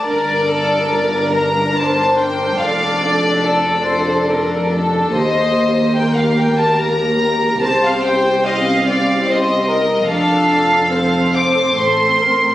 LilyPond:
<<
  \new Staff \with { instrumentName = "Violin section" } { \time 3/4 \key g \minor \tempo 4 = 72 d''4. bes''8 a''8 g''8 | f''8 d''2 r8 | ees''4 g''16 f''16 g''16 a''16 bes''4 | a''16 f''16 g''8 f''4 ees''4 |
f''4. d'''8 c'''4 | }
  \new Staff \with { instrumentName = "Violin section" } { \time 3/4 \key g \minor bes'8 a'8 bes'4 c''4 | d''4 a'8 c''8 bes'8 a'8 | c''4 bes'2 | c''4 ees''8 d''8 c''8 bes'8 |
a'4 c''2 | }
  \new Staff \with { instrumentName = "Viola section" } { \time 3/4 \key g \minor << { bes'2. | a'2. | g'2.~ | g'2. |
a'2 a'8 bes'8 | } \\ { d'2.~ | d'2. | bes2. | c'2. |
d'4 c'4 c'4 | } >> }
  \new Staff \with { instrumentName = "Cello section" } { \clef bass \time 3/4 \key g \minor g,2. | f,2. | ees,2. | c,2. |
f,2 a,4 | }
  \new Staff \with { instrumentName = "Double bass section" } { \clef bass \time 3/4 \key g \minor g,,2. | f,,2. | ees,2. | c,2. |
f,,2 a,,4 | }
>>